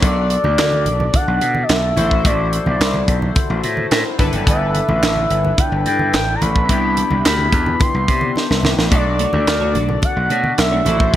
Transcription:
0.02 B1 D4 F#4 A4 D5, kick, closed hi-hat, muted conga
0.30 closed hi-hat
0.44 D2, high conga
0.58 D2, snare, clap, closed hi-hat, muted conga
0.72 high conga
0.86 B1, closed hi-hat
1.00 high conga, low conga
1.13 F#5, kick, closed hi-hat, muted conga, high conga
1.28 B1
1.41 B2, closed hi-hat, muted conga
1.55 high conga
1.63 D#5
1.69 B1 E5, snare, clap, closed hi-hat
1.96 A1 E4 F#4 A4 C5, closed hi-hat, high conga, low conga
2.11 kick
2.25 A1 D5, kick, closed hi-hat
2.53 closed hi-hat
2.66 B1 D5, high conga
2.80 C2, snare, clap, closed hi-hat
2.94 high conga
3.08 B1, kick, closed hi-hat
3.22 high conga, low conga
3.36 kick, closed hi-hat, high conga
3.50 A1
3.64 A2, closed hi-hat, muted conga
3.77 high conga
3.91 A2, snare, clap, closed hi-hat
4.18 G1 D4 E4 A4 B4, kick, closed hi-hat, muted conga, high conga, low conga
4.33 F#1, closed hi-hat
4.47 G1 E5, kick, closed hi-hat, muted conga
4.75 closed hi-hat, muted conga
4.88 A1, high conga
5.03 A1, snare, clap, closed hi-hat, muted conga
5.16 high conga
5.30 G1, closed hi-hat
5.45 high conga, low conga
5.58 G5, kick, closed hi-hat, high conga
5.72 G1
5.86 G2 G5, closed hi-hat, muted conga
5.99 high conga
6.13 A1 G5, snare, clap, closed hi-hat
6.35 A#5
6.41 A1 B5, closed hi-hat, muted conga, high conga, low conga
6.56 kick
6.69 C2 B3 D4 E4 G4, kick, closed hi-hat
6.97 closed hi-hat, muted conga
7.11 C2, high conga
7.25 D2 B5, snare, clap, closed hi-hat
7.38 high conga
7.52 E2, kick, closed hi-hat, muted conga
7.66 high conga, low conga
7.80 C6, kick, closed hi-hat, muted conga, high conga
7.94 C2
8.08 C3, kick, closed hi-hat
8.21 high conga
8.36 snare, muted conga
8.50 C2, snare
8.63 C2, snare, high conga, low conga
8.78 A1, snare
8.91 B1 A3 D4 F#4 A4 C#5 D5, kick, closed hi-hat
9.19 A3 D4 F#4 C#5, closed hi-hat
9.33 D2 A3 D4 F#4 C#5, high conga
9.47 D2, muted clean electric guitar stroke, snare, clap, closed hi-hat
9.60 A3 D4 F#4 C#5, high conga
9.74 B1 A3 D4 F#4 D5, closed hi-hat, muted conga
9.88 muted clean electric guitar stroke, high conga, low conga
10.02 F#5, muted clean electric guitar stroke, kick, closed hi-hat, high conga
10.16 B1, muted clean electric guitar stroke
10.30 B2 A3 D4 F#4 C#5, closed hi-hat
10.44 muted clean electric guitar stroke, high conga
10.58 B1 E5, muted clean electric guitar stroke, snare, clap, closed hi-hat
10.71 A3 D4 F#4 C#5
10.85 A1 C4 E4 F#4 A4 C5 D5, closed hi-hat, muted conga, high conga, low conga
10.99 muted clean electric guitar stroke, kick
11.13 C4

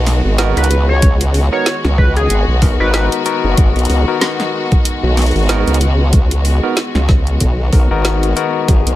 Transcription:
Already playing: B1 D#3 G#3 B3 D#4 F#4 A#4, downlifter
0.07 snare, open hi-hat
0.25 G#1
0.38 B3 D#4 F#4 A#4, snare, closed hi-hat
0.57 C#2 B4, closed hi-hat
0.64 closed hi-hat
0.71 closed hi-hat
0.89 C#5
1.02 kick, closed hi-hat
1.21 closed hi-hat
1.34 open hi-hat
1.52 B3 D#4 F#4 A#4 C#5
1.66 snare, closed hi-hat
1.85 C#2, snare
1.98 B4, kick
2.16 G#4, closed hi-hat
2.30 G#1, closed hi-hat
2.48 B1
2.62 B3 D#4 F#4 A#4, kick, open hi-hat
2.80 G#1 B3 D#4 F#4 A#4 B4
2.94 B4, snare, closed hi-hat
3.12 closed hi-hat
3.26 B3 D#4 F#4 A#4, closed hi-hat
3.44 F#1
3.57 G#1, kick, closed hi-hat
3.76 B1, closed hi-hat
3.79 closed hi-hat
3.85 closed hi-hat
3.89 C#2, open hi-hat
4.08 B3 D#4 F#4 A#4
4.21 snare, closed hi-hat
4.40 snare
4.72 kick, closed hi-hat
4.85 closed hi-hat
5.03 B1
5.17 snare, open hi-hat
5.22 open hi-hat
5.26 open hi-hat
5.31 open hi-hat
5.35 G#1, open hi-hat
5.39 open hi-hat
5.43 open hi-hat
5.46 B3 D#4 F#4 A#4, snare, closed hi-hat, open hi-hat
5.67 C#2, closed hi-hat
5.74 closed hi-hat
5.81 closed hi-hat
6.13 kick, closed hi-hat
6.31 closed hi-hat
6.45 open hi-hat
6.63 B3 D#4 F#4 A#4
6.77 snare, closed hi-hat
6.95 C#2, snare
7.09 kick, snare
7.27 closed hi-hat
7.40 B1, kick, closed hi-hat
7.73 B1 B3 D#4 F#4 A#4, kick, open hi-hat
7.91 G#1 B3 D#4 F#4 A#4
8.05 snare, closed hi-hat
8.23 closed hi-hat
8.36 B3 D#4 F#4 A#4, closed hi-hat
8.68 G#1 G#4, kick, closed hi-hat
8.86 B1, closed hi-hat

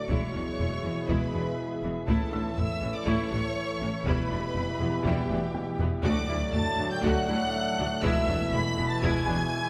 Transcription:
0.09 E1 E2 B2 E3 G#3 B3 E4 G#4 C#5 E5 C#6, taiko
0.34 E1 E2 F#3 D4
0.59 E1 E2 G#3 E4, taiko low
0.84 E1 E2 E3 B3
1.08 E1 E2 G#3 E4 B4 B5, taiko
1.34 E1 E2 F#3 D4
1.83 E1 E2 E3 B3
2.07 A1 A2 A3 E4 A4 A5, taiko
2.33 A1 A2 G3 D4 E5 E6
2.57 A1 A2 A3 E4 E5 E6, taiko low
2.82 A1 A2 E3 C#4
2.94 D5 D6
3.06 A1 A2 A3 E4 C#5 C#6, taiko
3.31 A1 A2 G3 D4
3.80 A1 A2 E3 C#4
4.05 E1 E2 B2 E3 G3 B3 E4 G4 B4 B5, taiko
4.30 E1 E2 F#3 D4
4.55 E1 E2 G3 E4, taiko low
4.80 E1 E2 E3 B3
5.04 E1 E2 G3 E4 G4 G5, taiko
5.30 E1 E2 F#3 D4, taiko high
5.55 G5, taiko high
5.79 E1 E2 E3 B3, taiko low
6.03 D2 A2 F#3 A3 D4 F#4 A4 D5 D6, taiko
6.29 D2 G3 E4
6.54 D2 A3 F#4 A5 A6, taiko low
6.78 D2 F#3 D4
6.91 G5 G6
7.03 D2 A3 F#4 F#5 F#6, taiko
7.28 D2 G3 E4
7.54 E5
7.78 D2 F#3 D4
8.02 E1 E2 B2 E3 G#3 B3 E4 E5 E6, taiko
8.27 E1 E2 F#3 D4 E5
8.52 E1 E2 G#3 E4 B5 B6, taiko low
8.78 E1 E2 E3 B3
8.90 A5 A6
9.02 E1 E2 G#3 E4 G#5 G#6, taiko
9.26 E1 E2 F#3 D4 G#5

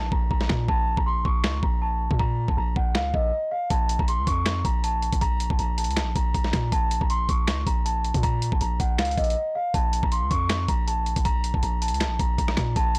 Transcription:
Already playing: downlifter
0.00 A#1
0.12 A#1 A#5, kick
0.31 A#1 A#5, kick
0.41 snare
0.49 A#2, finger snap, kick, snare
0.68 A#1 A5, kick
0.97 A#1 A#5, kick
1.06 C6
1.25 A#1 C#6, kick
1.44 C#2, finger snap, snare
1.63 A#1 A#5, kick
1.82 A5
2.11 A#2, kick
2.19 A#5, kick
2.48 A#1 A5, kick
2.57 A#1 A#5
2.76 A#1 F#5, kick
2.95 C#2 F5, finger snap, snare
3.14 A#1 D#5, kick
3.51 F5
3.70 A#1 A5, kick, closed hi-hat
3.89 closed hi-hat
3.99 A#1 A#5, kick
4.08 C6, closed hi-hat
4.18 C#2
4.27 F2 C#6, kick, closed hi-hat
4.46 finger snap, snare, closed hi-hat
4.65 A#1 A#5, kick, closed hi-hat
4.84 A5, closed hi-hat
5.02 closed hi-hat
5.12 A#1, kick, closed hi-hat
5.21 A#5, kick, closed hi-hat
5.40 closed hi-hat
5.50 A#1 A5, kick
5.59 A#1 A#5, closed hi-hat
5.78 A5, closed hi-hat
5.84 C#2, closed hi-hat
5.91 closed hi-hat
5.96 finger snap, snare, closed hi-hat
6.02 A#1
6.16 A#1 A#5, kick, closed hi-hat
6.34 A#1 A#5, kick, closed hi-hat
6.44 snare
6.53 A#2, finger snap, kick, snare, closed hi-hat
6.72 A#1 A5, kick, closed hi-hat
6.91 closed hi-hat
7.01 A#1 A#5, kick
7.10 C6, closed hi-hat
7.29 A#1 C#6, kick, closed hi-hat
7.47 C#2, finger snap, snare, closed hi-hat
7.67 A#1 A#5, kick, closed hi-hat
7.85 A5, closed hi-hat
8.04 closed hi-hat
8.14 A#2, kick, closed hi-hat
8.23 A#5, kick, closed hi-hat
8.42 closed hi-hat
8.52 A#1 A5, kick
8.61 A#1 A#5, closed hi-hat
8.80 A#1 F#5, kick, closed hi-hat
8.98 C#2 F5, finger snap, snare, closed hi-hat
9.05 closed hi-hat
9.11 closed hi-hat
9.17 A#1 D#5, kick, closed hi-hat
9.24 closed hi-hat
9.30 closed hi-hat
9.55 F5
9.74 A#1 A5, kick, closed hi-hat
9.93 closed hi-hat
10.03 A#1 A#5, kick
10.12 C6, closed hi-hat
10.22 C#2
10.31 F2 C#6, kick, closed hi-hat
10.49 finger snap, snare, closed hi-hat
10.68 A#1 A#5, kick, closed hi-hat
10.87 A5, closed hi-hat
11.06 closed hi-hat
11.16 A#1, kick, closed hi-hat
11.25 A#5, kick, closed hi-hat
11.44 closed hi-hat
11.54 A#1 A5, kick
11.63 A#1 A#5, closed hi-hat
11.82 A5, closed hi-hat
11.88 C#2, closed hi-hat
11.94 closed hi-hat
12.00 finger snap, snare, closed hi-hat
12.06 A#1
12.19 A#1 A#5, kick, closed hi-hat
12.38 A#1 A#5, kick, closed hi-hat
12.48 cross-stick, snare
12.57 A#2, finger snap, kick, cross-stick, snare, closed hi-hat
12.76 A#1 A5, kick, closed hi-hat
12.95 closed hi-hat

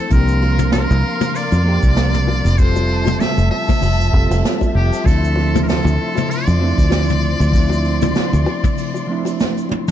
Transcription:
Already playing: A4
0.10 C2 F3 A#3 C4 D4 A#4 F5 C6, kick, open hi-hat, shaker
0.15 G4
0.28 shaker
0.42 open hi-hat, high bongo
0.59 mid tom, open hi-hat, shaker
0.72 A#4, snare, open hi-hat, high bongo, shaker
0.91 C2, shaker
1.21 mid tom, open hi-hat, high bongo, shaker
1.36 D5, open hi-hat, shaker
1.52 F2, high bongo, shaker
1.64 F3 A#3 C4 D4
1.68 G4
1.83 C2, kick, open hi-hat, shaker
1.97 snare, open hi-hat, high bongo, shaker
2.14 mid tom, shaker
2.27 high bongo
2.45 F1, open hi-hat, shaker
2.58 F3 G3 C4 F4 C5 E5 A5, kick, open hi-hat, shaker
2.62 A4
2.76 high bongo, shaker
2.89 open hi-hat
3.05 mid tom, open hi-hat, high bongo, shaker
3.20 E5, snare, open hi-hat, shaker
3.38 F1, shaker
3.51 E5, high bongo
3.69 kick, mid tom, open hi-hat, shaker
3.82 F1, open hi-hat, high bongo, shaker
4.01 shaker
4.11 F1 G3 C4, kick
4.16 F4 A4
4.30 F1, open hi-hat, high bongo, shaker
4.45 snare, open hi-hat, shaker
4.61 kick, high bongo, shaker
4.75 F1 G4
4.93 open hi-hat, shaker
5.04 D2 F3 A3 C4 A4 C6, kick, open hi-hat, high bongo, shaker
5.08 D4 E4
5.25 shaker
5.36 open hi-hat, high bongo
5.55 mid tom, open hi-hat, shaker
5.63 A#4
5.68 A4, snare, open hi-hat, shaker
5.85 D2, high bongo, shaker
6.15 mid tom, open hi-hat, high bongo, shaker
6.30 D5, open hi-hat, shaker
6.48 F2, shaker
6.59 F3 A3 C4 D4, high bongo
6.64 E4
6.78 D2, kick, open hi-hat, shaker
6.90 snare, open hi-hat, high bongo, shaker
7.09 mid tom, shaker
7.40 D2, open hi-hat, high bongo, shaker
7.51 F3 A3 C4 D4, kick, open hi-hat, shaker
7.57 E4
7.70 high bongo, shaker
7.84 open hi-hat
8.02 mid tom, open hi-hat, shaker
8.15 snare, open hi-hat, high bongo, shaker
8.33 D2, shaker
8.46 open hi-hat, high bongo
8.64 kick, mid tom, open hi-hat, shaker
8.78 open hi-hat, shaker
8.94 high bongo, shaker
9.07 F3 A3 C4 D4
9.12 E4
9.25 open hi-hat, high bongo, shaker
9.40 snare, open hi-hat, shaker
9.58 shaker
9.69 high tom, high bongo
9.88 open hi-hat, mid tom, shaker

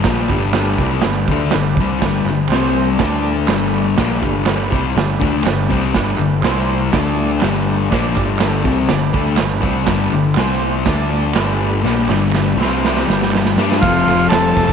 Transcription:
0.04 A#1 A#2 F3 A#3 D4 B4, kick, snare, open hi-hat
0.09 G4
0.29 G1 G2 D3 G3, kick, clap
0.53 D4 G4 B4, snare, clap, open hi-hat
0.78 C2 C3 G3, kick
0.83 C4
1.02 G1 G2 D3 D4 G4 B4, snare, open hi-hat
1.27 D2 D3 A3, kick
1.31 D4
1.50 G1 D4 G4 B4, snare, clap, open hi-hat
1.54 G2 D3
1.77 C2 C3 G3, kick
1.82 C4
1.99 G1 D4 G4 B4, kick, snare, open hi-hat
2.03 G2 D3 G3
2.25 G1, clap
2.29 G2 D3
2.48 C2 C4 G4 C5, clap
2.52 C3 G3 C4, snare, open hi-hat
2.93 D4 A4 D5
2.99 D2 D3 A3 D4, kick, snare, open hi-hat
3.46 G1 G2 D3 G3 D4 G4 B4, snare, clap, open hi-hat
3.96 A#1 A#2 F3 D4 G4 B4, kick, snare, open hi-hat
4.00 A#3
4.21 G1 G2 D3 G3, kick
4.42 D4 G4 B4, snare, clap, open hi-hat
4.71 C2 C3 G3 C4, kick
4.95 G1 G2 D3 D4 G4 B4, snare, open hi-hat
5.20 D2 D3 A3 D4, kick
5.42 G1 G2 D3 D4 G4 B4, clap
5.47 snare, open hi-hat
5.69 C2 C3 G3 C4, kick
5.93 G1 G2 D3 G3 D4, kick, snare, open hi-hat
5.98 G4 B4
6.18 G1 G2 D3, clap
6.40 C2 C3 C4 G4 C5, clap
6.44 G3 C4, snare, open hi-hat
6.91 D2 D3 A3 D4 A4 D5, kick, snare, open hi-hat
7.36 D4 G4 B4
7.41 G1 G2 D3 G3, snare, clap, open hi-hat
7.89 A#1 A#2 F3 A#3 D4 G4 D5, kick, snare, open hi-hat
8.16 G1 G2 D3 G3, kick, clap
8.38 D4 G4 A4, snare, clap, open hi-hat
8.64 C2 C3 G3 C4, kick
8.86 G2 D3 D4 G4 B4, snare, open hi-hat
8.91 G1
9.13 D2 D3 A3 D4, kick
9.37 G1 G2 D3 D4 G4 B4, snare, clap, open hi-hat
9.61 C2 C3 G3 C4, kick
9.83 G2 D4 G4 B4, snare, open hi-hat
9.87 G1 D3 G3, kick
10.11 G1 G2 D3, clap
10.33 C4 G4 C5, clap
10.37 C2 C3 G3 C4, snare, open hi-hat
10.85 D2 D3 A3 D4 A4 D5, kick, snare, open hi-hat
11.33 G1 G2 D3 G3 D4 G4 B4, snare, clap, open hi-hat
11.82 A#1 A#2 F3 A#3 D4 G4 B4, snare
12.08 G1 G2 D3 G3, snare, clap
12.33 D4 G4 B4, snare, clap
12.56 C2 C3 G3 C4 C5 E5
12.60 G4, snare
12.68 F5
12.84 G5, snare
12.97 snare
13.05 G1 G2 D3 G3 D4 G4 B4
13.10 snare
13.22 snare
13.31 A5, snare, clap
13.45 snare
13.56 G2 G3 D4 G4, snare
13.72 snare
13.78 F2 F4 A4 C5
13.82 F1 C3 F3, kick, crash
14.07 F1, ride
14.25 F4 A4 C5
14.31 F1, snare, clap, ride
14.56 F1, kick, ride
14.69 kick

